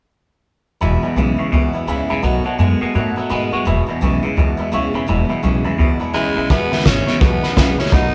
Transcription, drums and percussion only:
6.50 kick loud
6.50 snare soft
6.72 snare soft
6.79 snare soft
6.86 kick medium
6.86 snare loud
6.86 hi-hat pedal medium
7.08 snare soft
7.21 kick loud
7.21 snare soft
7.43 snare soft
7.57 kick medium
7.57 snare loud
7.57 hi-hat pedal medium
7.79 snare soft
7.86 snare soft
7.92 kick loud
7.92 snare soft

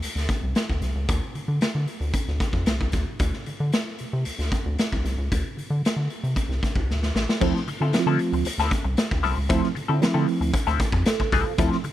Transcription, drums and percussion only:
0.02 closed hi-hat medium
0.17 snare soft
0.17 closed hi-hat soft
0.29 kick medium
0.29 snare soft
0.29 closed hi-hat medium
0.55 snare loud
0.55 closed hi-hat medium
0.69 kick medium
0.82 snare soft
0.82 closed hi-hat medium
1.09 kick loud
1.09 closed hi-hat loud
1.35 closed hi-hat medium
1.61 snare loud
1.61 closed hi-hat medium
1.88 closed hi-hat medium
2.02 closed hi-hat soft
2.13 kick medium
2.13 closed hi-hat medium
2.28 snare soft
2.40 kick medium
2.40 snare soft
2.40 closed hi-hat medium
2.53 kick medium
2.66 snare loud
2.66 closed hi-hat medium
2.81 kick medium
2.92 kick medium
2.92 snare soft
2.92 closed hi-hat medium
3.19 kick loud
3.19 closed hi-hat medium
3.33 snare soft
3.46 closed hi-hat medium
3.72 snare loud
3.72 closed hi-hat medium
3.99 closed hi-hat medium
4.25 closed hi-hat medium
4.39 snare soft
4.39 closed hi-hat soft
4.52 kick medium
4.52 snare soft
4.52 closed hi-hat medium
4.79 snare medium
4.79 closed hi-hat medium
4.92 kick medium
5.05 snare soft
5.05 closed hi-hat medium
5.32 kick loud
5.32 closed hi-hat medium
5.59 closed hi-hat medium
5.85 snare loud
5.85 closed hi-hat medium
6.10 closed hi-hat medium
6.24 closed hi-hat medium
6.36 kick medium
6.36 closed hi-hat medium
6.51 snare soft
6.63 kick medium
6.63 snare soft
6.63 closed hi-hat medium
6.75 kick medium
6.91 snare soft
7.03 snare medium
7.16 snare medium
7.29 snare medium
7.41 kick loud
7.41 crash loud
7.56 snare soft
7.68 closed hi-hat medium
7.93 snare loud
7.93 closed hi-hat medium
8.19 closed hi-hat medium
8.33 closed hi-hat medium
8.45 closed hi-hat medium
8.58 snare soft
8.58 closed hi-hat medium
8.71 kick medium
8.71 snare soft
8.71 closed hi-hat medium
8.97 snare loud
8.97 closed hi-hat medium
9.11 kick medium
9.23 snare soft
9.23 open hi-hat medium
9.49 kick loud
9.49 closed hi-hat loud
9.64 snare soft
9.76 closed hi-hat medium
10.02 snare loud
10.02 closed hi-hat medium
10.28 open hi-hat medium
10.42 closed hi-hat medium
10.54 kick loud
10.54 closed hi-hat medium
10.67 snare soft
10.67 closed hi-hat medium
10.80 kick loud
10.80 snare soft
10.80 closed hi-hat medium
10.92 kick loud
11.06 snare loud
11.06 closed hi-hat loud
11.20 kick medium
11.32 kick loud
11.32 snare soft
11.32 open hi-hat medium
11.58 kick loud
11.58 closed hi-hat loud
11.72 snare soft
11.84 closed hi-hat medium

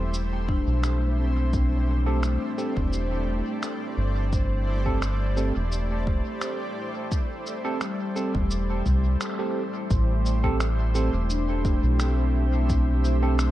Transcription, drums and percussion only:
0.14 shaker soft
0.49 kick loud
0.84 finger snap medium
0.84 shaker soft
1.53 kick loud
1.53 shaker soft
2.23 finger snap medium
2.23 shaker soft
2.58 shaker soft
2.77 kick medium
2.93 shaker soft
3.63 finger snap medium
3.63 shaker soft
4.33 kick loud
4.33 shaker soft
4.86 kick medium
5.02 finger snap medium
5.02 shaker soft
5.37 shaker soft
5.72 shaker soft
6.07 kick medium
6.41 finger snap medium
6.41 shaker soft
7.12 kick loud
7.12 shaker medium
7.46 shaker soft
7.81 finger snap medium
7.81 shaker soft
8.16 shaker soft
8.35 kick medium
8.51 shaker soft
8.86 kick medium
8.86 shaker soft
9.21 finger snap medium
9.21 shaker medium
9.90 kick loud
9.90 shaker medium
10.26 shaker soft
10.44 kick medium
10.60 finger snap medium
10.60 shaker medium
10.95 shaker soft
11.30 shaker medium
11.65 kick loud
11.65 shaker soft
12.00 finger snap medium
12.00 shaker medium
12.69 kick loud
12.69 shaker medium
13.04 shaker soft
13.39 finger snap medium
13.39 shaker medium

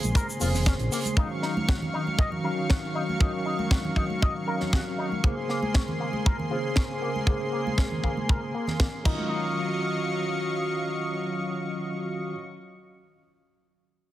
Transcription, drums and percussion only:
0.03 closed hi-hat medium
0.03 high conga medium
0.03 shaker medium
0.15 kick loud
0.15 closed hi-hat medium
0.15 shaker soft
0.30 shaker soft
0.41 open hi-hat loud
0.41 shaker medium
0.55 snare soft
0.55 open hi-hat medium
0.55 low conga medium
0.55 shaker soft
0.66 kick loud
0.66 snare loud
0.66 shaker soft
0.79 closed hi-hat soft
0.92 open hi-hat loud
0.92 shaker medium
1.05 closed hi-hat soft
1.05 high conga medium
1.05 shaker soft
1.17 kick loud
1.43 snare soft
1.57 high conga medium
1.69 kick loud
1.69 snare loud
1.82 low conga medium
2.07 high conga medium
2.19 kick loud
2.32 low conga medium
2.70 kick loud
2.70 snare loud
3.09 high conga medium
3.21 kick loud
3.59 high conga medium
3.71 kick loud
3.71 snare loud
3.85 low conga medium
3.96 kick medium
4.10 high conga medium
4.22 kick loud
4.60 snare soft
4.60 low conga medium
4.73 kick loud
4.73 snare loud
5.12 high conga medium
5.24 kick loud
5.49 snare soft
5.63 high conga medium
5.75 kick loud
5.75 snare loud
5.88 low conga medium
6.13 high conga medium
6.26 kick loud
6.39 low conga medium
6.76 kick loud
6.76 snare loud
7.16 high conga medium
7.27 kick medium
7.67 high conga medium
7.78 kick loud
7.78 snare loud
7.91 low conga medium
8.04 kick soft
8.17 high conga medium
8.29 kick loud
8.67 snare soft
8.67 low conga medium
8.80 kick loud
8.80 snare loud
9.05 kick loud
9.05 crash medium
9.19 high conga medium

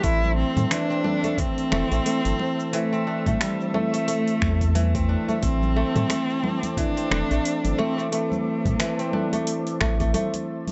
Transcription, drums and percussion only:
0.03 kick loud
0.03 open hi-hat medium
0.03 cabasa medium
0.24 high conga medium
0.24 cabasa soft
0.57 open hi-hat soft
0.57 low conga medium
0.57 cabasa medium
0.71 finger snap medium
0.71 open hi-hat medium
0.71 muted conga soft
0.71 cabasa medium
0.91 cabasa soft
1.04 low conga medium
1.23 open hi-hat soft
1.23 muted conga soft
1.23 high conga soft
1.23 cabasa medium
1.38 kick loud
1.38 open hi-hat medium
1.38 low conga medium
1.38 cabasa medium
1.58 open hi-hat soft
1.58 cabasa soft
1.72 finger snap medium
1.72 muted conga medium
1.72 low conga medium
1.92 open hi-hat soft
1.92 cabasa medium
2.06 open hi-hat medium
2.06 cabasa medium
2.25 open hi-hat soft
2.25 high conga soft
2.25 cabasa soft
2.40 muted conga medium
2.60 cabasa medium
2.73 open hi-hat medium
2.73 cabasa medium
2.93 cabasa soft
3.26 kick medium
3.26 open hi-hat soft
3.26 low conga medium
3.26 cabasa medium
3.41 finger snap medium
3.41 open hi-hat medium
3.41 muted conga soft
3.41 cabasa medium
3.61 cabasa soft
3.74 low conga medium
3.94 open hi-hat soft
3.94 cabasa medium
4.08 open hi-hat medium
4.08 cabasa medium
4.28 open hi-hat soft
4.28 cabasa soft
4.41 finger snap medium
4.41 kick loud
4.41 high conga medium
4.61 kick medium
4.61 open hi-hat soft
4.61 cabasa medium
4.75 open hi-hat medium
4.75 low conga medium
4.75 cabasa medium
4.95 kick loud
4.95 open hi-hat soft
4.95 high conga soft
4.95 cabasa soft
5.29 high conga medium
5.29 cabasa medium
5.43 kick loud
5.43 open hi-hat medium
5.43 cabasa medium
5.63 high conga medium
5.63 cabasa soft
5.96 open hi-hat soft
5.96 low conga medium
5.96 cabasa medium
6.10 finger snap medium
6.10 open hi-hat medium
6.10 muted conga medium
6.10 cabasa medium
6.30 cabasa soft
6.44 low conga medium
6.63 open hi-hat soft
6.63 muted conga soft
6.63 high conga soft
6.63 cabasa medium
6.77 kick loud
6.77 open hi-hat medium
6.77 low conga loud
6.77 cabasa medium
6.97 open hi-hat soft
6.97 cabasa soft
7.11 finger snap medium
7.11 muted conga medium
7.11 low conga medium
7.31 open hi-hat soft
7.31 cabasa medium
7.45 open hi-hat medium
7.45 cabasa medium
7.64 open hi-hat soft
7.64 high conga soft
7.64 cabasa soft
7.79 muted conga medium
7.99 cabasa medium
8.12 open hi-hat medium
8.12 cabasa medium
8.32 high conga medium
8.32 cabasa soft
8.65 kick medium
8.65 open hi-hat soft
8.65 low conga loud
8.65 low conga medium
8.65 cabasa medium
8.79 finger snap medium
8.79 open hi-hat medium
8.79 muted conga medium
8.79 cabasa medium
8.99 open hi-hat soft
8.99 cabasa soft
9.13 low conga medium
9.33 open hi-hat soft
9.33 muted conga soft
9.33 high conga soft
9.33 cabasa medium
9.47 open hi-hat medium
9.47 cabasa medium
9.67 open hi-hat soft
9.67 cabasa soft
9.81 finger snap medium
9.81 kick loud
9.81 high conga medium
10.00 kick medium
10.00 open hi-hat soft
10.00 low conga medium
10.00 cabasa medium
10.14 open hi-hat medium
10.14 low conga medium
10.14 cabasa medium
10.34 open hi-hat soft
10.34 high conga soft
10.34 cabasa soft
10.67 open hi-hat soft
10.67 high conga medium
10.67 cabasa medium

